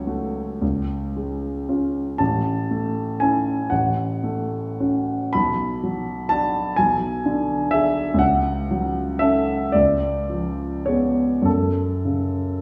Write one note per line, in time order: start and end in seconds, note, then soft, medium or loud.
0.00 0.58 C#2 soft
0.00 0.39 F#3 soft
0.00 1.68 C#5 medium
0.07 0.58 A3 soft
0.07 0.58 F#4 soft
0.62 2.16 C#2 soft
1.16 2.00 G#3 soft
1.69 2.16 C#4 soft
1.69 2.16 F4 soft
2.18 3.67 A1 soft
2.18 3.20 A5 medium
2.71 3.51 A3 soft
3.20 3.67 C#4 soft
3.20 3.68 E4 soft
3.20 3.71 G#5 medium
3.70 5.30 A1 soft
3.70 5.34 F#5 medium
4.24 5.13 A3 soft
4.80 5.30 C#4 soft
4.80 5.30 F#4 soft
5.33 6.75 B1 soft
5.33 6.30 B5 medium
5.83 6.59 F#3 soft
6.29 6.74 D4 soft
6.29 6.75 F#4 soft
6.29 6.77 A5 medium
6.76 8.17 B1 soft
6.76 7.72 G#5 medium
7.26 8.01 D3 soft
7.71 8.17 D4 soft
7.71 8.17 G#4 soft
7.71 8.20 E5 medium
8.14 9.66 C#2 medium
8.19 9.19 F#5 medium
8.71 9.52 F#3 soft
9.19 9.69 C#4 soft
9.19 9.69 A4 soft
9.19 9.72 E5 medium
9.72 11.42 C#2 soft
9.72 10.86 D5 medium
10.29 11.22 F3 soft
10.86 11.42 B3 soft
10.86 11.42 G#4 soft
10.86 11.45 C#5 medium
11.42 12.62 F#2 soft
11.42 12.62 A4 soft
12.05 12.62 C#3 soft